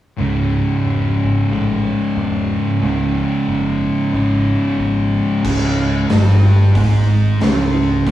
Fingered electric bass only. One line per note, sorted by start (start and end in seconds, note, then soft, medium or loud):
0.18 0.59 C#1 medium
0.84 1.09 E1 medium
1.24 1.40 G#1 medium
1.50 1.90 A1 medium
2.16 2.56 E1 loud
2.82 3.22 C#1 medium
3.47 3.88 F#1 medium
4.13 4.54 G#1 medium
4.78 5.18 G#1 medium
5.45 6.06 C#1 medium
6.10 6.72 G1 medium
6.75 7.37 G#1 loud
7.41 8.03 C#1 medium
8.06 8.11 C#1 loud